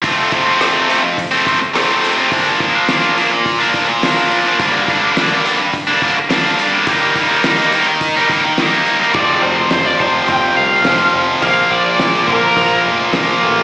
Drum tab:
CC |--------|--------|--------|--------|
HH |oooooooo|oooooooo|oooooooo|oooooooo|
SD |--r---r-|--o---o-|--o---o-|--o---o-|
BD |oo--oo--|oo--oo--|oo--oo--|oo--oo--|

CC |x-------|--------|
HH |--o-o-o-|o-o-o-o-|
SD |--o---o-|--o---o-|
BD |o--oo---|o--oo---|